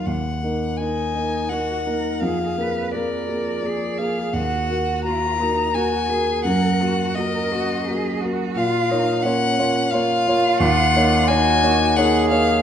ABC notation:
X:1
M:3/4
L:1/8
Q:1/4=86
K:Ebm
V:1 name="Violin"
g2 a2 g2 | f2 =d3 f | g2 b2 a2 | g2 e3 z |
[K:A#phr] e2 f2 e2 | f2 g2 f e |]
V:2 name="Cello"
z2 E2 G B | A c B2 A2 | G2 F E G A | B G B G A G |
[K:A#phr] E D C2 E2- | E2 F2 G2 |]
V:3 name="Grand piano"
E,, [B,EB] [B,EB] [B,EB] [B,EB] [B,EB] | F,, [B,AB] [B,AB] [B,AB] [B,AB] [B,AB] | E,, [B,GB] [B,GB] [B,GB] [B,GB] [B,GB] | G,, [B,GB] [B,GB] [B,GB] [B,GB] [B,GB] |
[K:A#phr] A,, [A,Ec] [A,Ec] [A,Ec] [A,Ec] [A,Ec] | D,, [A,Dc] [A,Dc] [A,Dc] [A,Dc] [A,Dc] |]